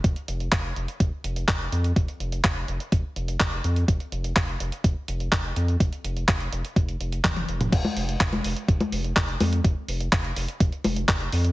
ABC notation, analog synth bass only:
X:1
M:4/4
L:1/8
Q:1/4=125
K:Cphr
V:1 name="Analog synth bass" clef=bass
F,,, F,,, F,,, F,,, F,,, F,,, F,,, F,, | F,,, F,,, F,,, F,,, F,,, F,,, F,,, F,, | F,,, F,,, F,,, F,,, F,,, F,,, F,,, F,, | F,,, F,,, F,,, F,,, F,,, F,,, F,,, F,,, |
F,,, F,,, F,,, F,,, F,,, F,,, F,,, F,, | F,,, F,,, F,,, F,,, F,,, F,,, F,,, F,, |]